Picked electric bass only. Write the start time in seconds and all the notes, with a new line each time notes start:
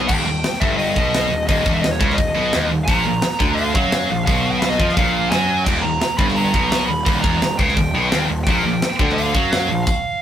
0.10 D#1
0.26 D#1
0.61 G1
0.97 B1
1.32 D#1
1.49 D#1
1.66 E1
1.84 D#1
2.00 C#2
2.18 D#1
2.35 B1
2.54 D#1
2.71 D#1
2.88 A#1
3.07 A#1
3.41 D2
3.75 F#2
4.10 A#1
4.28 B1
4.80 F2
4.97 A#1
5.31 F#2
5.66 D#1
5.84 D#1
6.18 G1
6.54 B1
6.89 D#1
7.07 D#1
7.24 E1
7.42 D#1
7.59 C#2
7.77 D#1
7.95 B1
8.12 D#1
8.29 D#1
8.47 A#1
8.64 A#1
9.00 D2
9.35 F#2
9.69 A#1